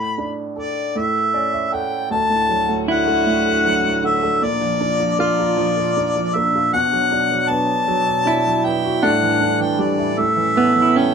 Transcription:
Already playing: upright piano A2, harmonica B5
0.18 upright piano D4
0.56 upright piano A4, harmonica D5
0.96 upright piano A2, harmonica E5
1.34 upright piano C#4 D5
1.53 upright piano E5
1.72 upright piano A4 F#5, harmonica G5
2.10 upright piano D2, string section D2 D3 E4 F#4, harmonica A5
2.30 upright piano A2
2.49 upright piano F#3
2.69 upright piano A2
2.87 upright piano D3, clean electric guitar E4, harmonica F#5
3.07 upright piano A3
3.26 upright piano A2
3.46 upright piano A4
3.65 upright piano F#3
3.84 upright piano A2
4.03 upright piano D3, harmonica E5
4.23 upright piano A3
4.42 upright piano A#2, string section A#2 F3 D4 A#4, harmonica D5
4.61 upright piano F3
4.81 upright piano D4
5.00 upright piano F3
5.19 upright piano A#3, clean electric guitar F4, harmonica D5
5.39 upright piano F4
5.57 upright piano F3
5.76 upright piano A#4
5.97 upright piano D4
6.16 upright piano F3
6.35 upright piano A#3, harmonica E5
6.55 upright piano F4
6.73 string section B2 F#3, upright piano B2, harmonica F#5
6.93 upright piano F#3
7.12 upright piano D4
7.31 upright piano F#3
7.49 upright piano B3, harmonica A5
7.88 upright piano F#3
8.07 upright piano D5
8.26 upright piano D4, clean electric guitar E4
8.46 upright piano F#3
8.64 upright piano B3, harmonica G5
8.84 upright piano F#4
9.03 upright piano A2, string section A2 G3 A4, clean electric guitar D4, harmonica F#5
9.23 upright piano E3
9.41 upright piano D4
9.60 upright piano E3, harmonica G5
9.79 upright piano G3, harmonica D5
9.98 upright piano E4
10.18 upright piano A2, string section G3 C#4, harmonica E5
10.37 upright piano E3
10.55 clean electric guitar B3, upright piano E4
10.75 upright piano E3
10.82 clean electric guitar E4
10.96 upright piano C#4, clean electric guitar C#4, harmonica G5

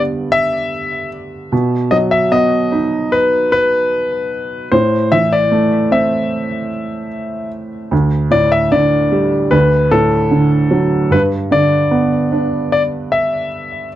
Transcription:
Already playing: upright piano G2 D3 G3 B3
0.32 grand piano E5
1.52 upright piano B2
1.91 upright piano F#3, grand piano D#5
2.11 grand piano E5
2.32 upright piano B3, grand piano D#5
2.72 upright piano D#4
3.12 grand piano B4
3.52 grand piano B4
4.72 upright piano A2, grand piano C5
5.12 upright piano E3, grand piano E5
5.33 grand piano D5
5.52 upright piano A3
5.91 upright piano C4, grand piano E5
7.91 upright piano D2
8.31 upright piano A2, grand piano D5
8.52 grand piano E5
8.72 upright piano D3, grand piano D5
9.12 upright piano G3
9.51 upright piano D2, grand piano B4
9.91 upright piano A2, grand piano A4
10.31 upright piano D3
10.71 upright piano F#3
11.11 upright piano G2, grand piano B4
11.51 upright piano D3, grand piano D5
11.91 upright piano B3
12.32 upright piano D4
12.72 grand piano D5
13.12 grand piano E5

